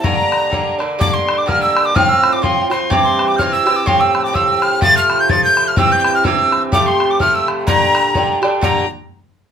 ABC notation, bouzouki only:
X:1
M:2/4
L:1/8
Q:"Swing" 1/4=126
K:Gdor
V:1 name="Bouzouki"
[G,,D,B,D]2 [G,,D,B,D] [D,B,D] | [G,,D,B,D]2 [G,,D,B,D]2 | [A,,F,CF]2 [A,,F,CF] [F,CF] | [G,,E,CG]2 [G,,E,CG] [E,CG] |
[A,,F,CG]2 [A,,F,CG]2 | [C,F,A,F]2 [C,F,A,F]2 | [G,,E,CG]2 [G,,E,CG]2 | [C,F,A,G]2 [C,F,A,G]2 |
[B,,D,DG]2 [B,,D,DG] [D,DG] | [B,,D,DG] z3 |]